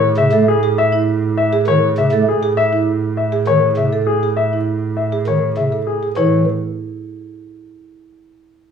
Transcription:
0, 0, Header, 1, 5, 480
1, 0, Start_track
1, 0, Tempo, 600000
1, 618, Time_signature, 3, 2, 24, 8
1, 6973, End_track
2, 0, Start_track
2, 0, Title_t, "Grand piano"
2, 0, Program_c, 0, 0
2, 141, Note_on_c, 0, 76, 74
2, 296, Note_off_c, 0, 76, 0
2, 386, Note_on_c, 0, 68, 65
2, 537, Note_off_c, 0, 68, 0
2, 626, Note_on_c, 0, 76, 82
2, 777, Note_off_c, 0, 76, 0
2, 1100, Note_on_c, 0, 76, 72
2, 1255, Note_off_c, 0, 76, 0
2, 1343, Note_on_c, 0, 73, 86
2, 1496, Note_off_c, 0, 73, 0
2, 1584, Note_on_c, 0, 76, 62
2, 1737, Note_off_c, 0, 76, 0
2, 1829, Note_on_c, 0, 68, 61
2, 1978, Note_off_c, 0, 68, 0
2, 2057, Note_on_c, 0, 76, 80
2, 2214, Note_off_c, 0, 76, 0
2, 2538, Note_on_c, 0, 76, 56
2, 2695, Note_off_c, 0, 76, 0
2, 2778, Note_on_c, 0, 73, 76
2, 2934, Note_off_c, 0, 73, 0
2, 3018, Note_on_c, 0, 76, 55
2, 3174, Note_off_c, 0, 76, 0
2, 3253, Note_on_c, 0, 68, 59
2, 3413, Note_off_c, 0, 68, 0
2, 3493, Note_on_c, 0, 76, 64
2, 3653, Note_off_c, 0, 76, 0
2, 3974, Note_on_c, 0, 76, 51
2, 4133, Note_off_c, 0, 76, 0
2, 4221, Note_on_c, 0, 73, 62
2, 4376, Note_off_c, 0, 73, 0
2, 4454, Note_on_c, 0, 76, 50
2, 4613, Note_off_c, 0, 76, 0
2, 4695, Note_on_c, 0, 68, 49
2, 4853, Note_off_c, 0, 68, 0
2, 4932, Note_on_c, 0, 73, 64
2, 5158, Note_off_c, 0, 73, 0
2, 6973, End_track
3, 0, Start_track
3, 0, Title_t, "Marimba"
3, 0, Program_c, 1, 12
3, 262, Note_on_c, 1, 69, 74
3, 416, Note_off_c, 1, 69, 0
3, 504, Note_on_c, 1, 68, 75
3, 657, Note_off_c, 1, 68, 0
3, 740, Note_on_c, 1, 64, 67
3, 895, Note_off_c, 1, 64, 0
3, 1221, Note_on_c, 1, 68, 82
3, 1376, Note_off_c, 1, 68, 0
3, 1702, Note_on_c, 1, 69, 62
3, 1856, Note_off_c, 1, 69, 0
3, 1943, Note_on_c, 1, 68, 76
3, 2096, Note_off_c, 1, 68, 0
3, 2182, Note_on_c, 1, 64, 62
3, 2336, Note_off_c, 1, 64, 0
3, 2659, Note_on_c, 1, 68, 70
3, 2815, Note_off_c, 1, 68, 0
3, 3140, Note_on_c, 1, 69, 57
3, 3295, Note_off_c, 1, 69, 0
3, 3385, Note_on_c, 1, 68, 57
3, 3537, Note_off_c, 1, 68, 0
3, 3625, Note_on_c, 1, 64, 46
3, 3777, Note_off_c, 1, 64, 0
3, 4098, Note_on_c, 1, 68, 59
3, 4255, Note_off_c, 1, 68, 0
3, 4578, Note_on_c, 1, 69, 48
3, 4734, Note_off_c, 1, 69, 0
3, 4822, Note_on_c, 1, 68, 54
3, 4938, Note_on_c, 1, 64, 59
3, 4976, Note_off_c, 1, 68, 0
3, 5161, Note_off_c, 1, 64, 0
3, 6973, End_track
4, 0, Start_track
4, 0, Title_t, "Pipe organ"
4, 0, Program_c, 2, 19
4, 138, Note_on_c, 2, 49, 65
4, 228, Note_off_c, 2, 49, 0
4, 258, Note_on_c, 2, 57, 78
4, 348, Note_off_c, 2, 57, 0
4, 1338, Note_on_c, 2, 51, 88
4, 1428, Note_off_c, 2, 51, 0
4, 1582, Note_on_c, 2, 49, 67
4, 1671, Note_off_c, 2, 49, 0
4, 1697, Note_on_c, 2, 57, 80
4, 1788, Note_off_c, 2, 57, 0
4, 2780, Note_on_c, 2, 51, 72
4, 2870, Note_off_c, 2, 51, 0
4, 3017, Note_on_c, 2, 49, 56
4, 3107, Note_off_c, 2, 49, 0
4, 4218, Note_on_c, 2, 51, 65
4, 4308, Note_off_c, 2, 51, 0
4, 4459, Note_on_c, 2, 49, 49
4, 4549, Note_off_c, 2, 49, 0
4, 4938, Note_on_c, 2, 52, 63
4, 5162, Note_off_c, 2, 52, 0
4, 6973, End_track
5, 0, Start_track
5, 0, Title_t, "Double bass"
5, 0, Program_c, 3, 43
5, 0, Note_on_c, 3, 45, 77
5, 4810, Note_off_c, 3, 45, 0
5, 4935, Note_on_c, 3, 45, 52
5, 5160, Note_off_c, 3, 45, 0
5, 6973, End_track
0, 0, End_of_file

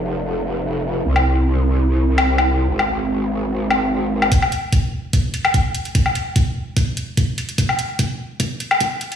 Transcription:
0, 0, Header, 1, 3, 480
1, 0, Start_track
1, 0, Tempo, 408163
1, 1237, Time_signature, 4, 2, 24, 8
1, 10770, End_track
2, 0, Start_track
2, 0, Title_t, "Wobble bass"
2, 0, Program_c, 0, 39
2, 0, Note_on_c, 0, 29, 85
2, 1214, Note_off_c, 0, 29, 0
2, 1234, Note_on_c, 0, 36, 89
2, 3133, Note_off_c, 0, 36, 0
2, 3156, Note_on_c, 0, 32, 85
2, 5054, Note_off_c, 0, 32, 0
2, 10770, End_track
3, 0, Start_track
3, 0, Title_t, "Drums"
3, 1362, Note_on_c, 9, 77, 53
3, 1480, Note_off_c, 9, 77, 0
3, 2563, Note_on_c, 9, 77, 78
3, 2680, Note_off_c, 9, 77, 0
3, 2803, Note_on_c, 9, 77, 62
3, 2920, Note_off_c, 9, 77, 0
3, 3283, Note_on_c, 9, 77, 51
3, 3401, Note_off_c, 9, 77, 0
3, 4357, Note_on_c, 9, 77, 58
3, 4475, Note_off_c, 9, 77, 0
3, 4964, Note_on_c, 9, 77, 60
3, 5076, Note_on_c, 9, 42, 77
3, 5077, Note_on_c, 9, 36, 92
3, 5081, Note_off_c, 9, 77, 0
3, 5194, Note_off_c, 9, 42, 0
3, 5195, Note_off_c, 9, 36, 0
3, 5203, Note_on_c, 9, 77, 49
3, 5317, Note_on_c, 9, 42, 52
3, 5321, Note_off_c, 9, 77, 0
3, 5434, Note_off_c, 9, 42, 0
3, 5557, Note_on_c, 9, 36, 93
3, 5557, Note_on_c, 9, 42, 81
3, 5674, Note_off_c, 9, 42, 0
3, 5675, Note_off_c, 9, 36, 0
3, 6036, Note_on_c, 9, 42, 81
3, 6037, Note_on_c, 9, 36, 94
3, 6154, Note_off_c, 9, 42, 0
3, 6155, Note_off_c, 9, 36, 0
3, 6277, Note_on_c, 9, 42, 52
3, 6394, Note_off_c, 9, 42, 0
3, 6404, Note_on_c, 9, 77, 76
3, 6517, Note_on_c, 9, 36, 91
3, 6517, Note_on_c, 9, 42, 80
3, 6522, Note_off_c, 9, 77, 0
3, 6634, Note_off_c, 9, 36, 0
3, 6634, Note_off_c, 9, 42, 0
3, 6757, Note_on_c, 9, 42, 54
3, 6874, Note_off_c, 9, 42, 0
3, 6883, Note_on_c, 9, 42, 38
3, 6997, Note_off_c, 9, 42, 0
3, 6997, Note_on_c, 9, 36, 93
3, 6997, Note_on_c, 9, 42, 80
3, 7114, Note_off_c, 9, 36, 0
3, 7115, Note_off_c, 9, 42, 0
3, 7124, Note_on_c, 9, 77, 49
3, 7237, Note_on_c, 9, 42, 54
3, 7241, Note_off_c, 9, 77, 0
3, 7354, Note_off_c, 9, 42, 0
3, 7477, Note_on_c, 9, 36, 92
3, 7477, Note_on_c, 9, 42, 80
3, 7594, Note_off_c, 9, 36, 0
3, 7595, Note_off_c, 9, 42, 0
3, 7956, Note_on_c, 9, 36, 97
3, 7956, Note_on_c, 9, 42, 78
3, 8074, Note_off_c, 9, 36, 0
3, 8074, Note_off_c, 9, 42, 0
3, 8197, Note_on_c, 9, 42, 54
3, 8314, Note_off_c, 9, 42, 0
3, 8436, Note_on_c, 9, 36, 95
3, 8437, Note_on_c, 9, 42, 80
3, 8554, Note_off_c, 9, 36, 0
3, 8555, Note_off_c, 9, 42, 0
3, 8677, Note_on_c, 9, 42, 55
3, 8795, Note_off_c, 9, 42, 0
3, 8804, Note_on_c, 9, 42, 39
3, 8916, Note_on_c, 9, 36, 98
3, 8917, Note_off_c, 9, 42, 0
3, 8917, Note_on_c, 9, 42, 78
3, 9034, Note_off_c, 9, 36, 0
3, 9035, Note_off_c, 9, 42, 0
3, 9044, Note_on_c, 9, 77, 48
3, 9158, Note_on_c, 9, 42, 56
3, 9162, Note_off_c, 9, 77, 0
3, 9275, Note_off_c, 9, 42, 0
3, 9396, Note_on_c, 9, 36, 104
3, 9396, Note_on_c, 9, 42, 79
3, 9514, Note_off_c, 9, 36, 0
3, 9514, Note_off_c, 9, 42, 0
3, 9876, Note_on_c, 9, 36, 101
3, 9876, Note_on_c, 9, 42, 81
3, 9993, Note_off_c, 9, 36, 0
3, 9993, Note_off_c, 9, 42, 0
3, 10116, Note_on_c, 9, 42, 51
3, 10234, Note_off_c, 9, 42, 0
3, 10243, Note_on_c, 9, 77, 75
3, 10355, Note_on_c, 9, 42, 83
3, 10356, Note_on_c, 9, 36, 103
3, 10360, Note_off_c, 9, 77, 0
3, 10472, Note_off_c, 9, 42, 0
3, 10473, Note_off_c, 9, 36, 0
3, 10596, Note_on_c, 9, 42, 51
3, 10713, Note_off_c, 9, 42, 0
3, 10722, Note_on_c, 9, 42, 37
3, 10770, Note_off_c, 9, 42, 0
3, 10770, End_track
0, 0, End_of_file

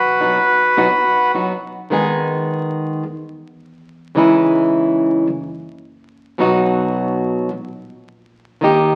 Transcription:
0, 0, Header, 1, 4, 480
1, 0, Start_track
1, 0, Key_signature, 5, "minor"
1, 0, Tempo, 561272
1, 1637, Time_signature, 4, 2, 24, 8
1, 7656, End_track
2, 0, Start_track
2, 0, Title_t, "Bandoneon"
2, 0, Program_c, 0, 23
2, 0, Note_on_c, 0, 66, 66
2, 0, Note_on_c, 0, 71, 87
2, 1124, Note_off_c, 0, 71, 0
2, 1126, Note_off_c, 0, 66, 0
2, 7656, End_track
3, 0, Start_track
3, 0, Title_t, "Nylon-string guitar"
3, 0, Program_c, 1, 24
3, 173, Note_on_c, 1, 47, 60
3, 176, Note_on_c, 1, 54, 57
3, 179, Note_on_c, 1, 59, 62
3, 179, Note_on_c, 1, 63, 58
3, 185, Note_on_c, 1, 66, 61
3, 322, Note_off_c, 1, 47, 0
3, 324, Note_off_c, 1, 54, 0
3, 325, Note_off_c, 1, 59, 0
3, 326, Note_off_c, 1, 63, 0
3, 328, Note_off_c, 1, 66, 0
3, 658, Note_on_c, 1, 47, 80
3, 661, Note_on_c, 1, 54, 78
3, 661, Note_on_c, 1, 59, 85
3, 665, Note_on_c, 1, 63, 83
3, 669, Note_on_c, 1, 66, 76
3, 738, Note_off_c, 1, 47, 0
3, 740, Note_off_c, 1, 54, 0
3, 740, Note_off_c, 1, 59, 0
3, 742, Note_off_c, 1, 63, 0
3, 744, Note_off_c, 1, 66, 0
3, 1147, Note_on_c, 1, 47, 51
3, 1149, Note_on_c, 1, 54, 60
3, 1150, Note_on_c, 1, 59, 54
3, 1154, Note_on_c, 1, 63, 59
3, 1158, Note_on_c, 1, 66, 62
3, 1297, Note_off_c, 1, 47, 0
3, 1298, Note_off_c, 1, 54, 0
3, 1298, Note_off_c, 1, 59, 0
3, 1300, Note_off_c, 1, 63, 0
3, 1302, Note_off_c, 1, 66, 0
3, 1627, Note_on_c, 1, 51, 79
3, 1636, Note_on_c, 1, 56, 73
3, 1642, Note_on_c, 1, 59, 90
3, 1648, Note_on_c, 1, 63, 87
3, 1654, Note_on_c, 1, 68, 92
3, 2583, Note_off_c, 1, 51, 0
3, 2588, Note_off_c, 1, 56, 0
3, 2591, Note_off_c, 1, 59, 0
3, 2594, Note_off_c, 1, 63, 0
3, 2597, Note_off_c, 1, 68, 0
3, 3548, Note_on_c, 1, 49, 77
3, 3557, Note_on_c, 1, 52, 82
3, 3564, Note_on_c, 1, 56, 84
3, 3570, Note_on_c, 1, 63, 91
3, 3575, Note_on_c, 1, 64, 87
3, 4498, Note_off_c, 1, 49, 0
3, 4503, Note_off_c, 1, 52, 0
3, 4506, Note_off_c, 1, 56, 0
3, 4509, Note_off_c, 1, 63, 0
3, 4512, Note_off_c, 1, 64, 0
3, 5458, Note_on_c, 1, 47, 92
3, 5463, Note_on_c, 1, 54, 81
3, 5473, Note_on_c, 1, 59, 89
3, 5477, Note_on_c, 1, 63, 84
3, 5485, Note_on_c, 1, 66, 86
3, 6407, Note_off_c, 1, 47, 0
3, 6410, Note_off_c, 1, 54, 0
3, 6414, Note_off_c, 1, 59, 0
3, 6416, Note_off_c, 1, 63, 0
3, 6420, Note_off_c, 1, 66, 0
3, 7364, Note_on_c, 1, 51, 80
3, 7378, Note_on_c, 1, 58, 86
3, 7385, Note_on_c, 1, 63, 86
3, 7391, Note_on_c, 1, 67, 92
3, 7656, Note_off_c, 1, 51, 0
3, 7656, Note_off_c, 1, 58, 0
3, 7656, Note_off_c, 1, 63, 0
3, 7656, Note_off_c, 1, 67, 0
3, 7656, End_track
4, 0, Start_track
4, 0, Title_t, "Upright bass"
4, 0, Program_c, 2, 32
4, 183, Note_on_c, 2, 30, 51
4, 384, Note_off_c, 2, 30, 0
4, 1636, Note_on_c, 2, 32, 66
4, 2550, Note_off_c, 2, 32, 0
4, 2592, Note_on_c, 2, 40, 70
4, 3506, Note_off_c, 2, 40, 0
4, 3553, Note_on_c, 2, 37, 71
4, 4463, Note_off_c, 2, 37, 0
4, 4509, Note_on_c, 2, 30, 73
4, 5418, Note_off_c, 2, 30, 0
4, 5468, Note_on_c, 2, 35, 80
4, 6374, Note_off_c, 2, 35, 0
4, 6422, Note_on_c, 2, 34, 70
4, 7332, Note_off_c, 2, 34, 0
4, 7379, Note_on_c, 2, 39, 75
4, 7656, Note_off_c, 2, 39, 0
4, 7656, End_track
0, 0, End_of_file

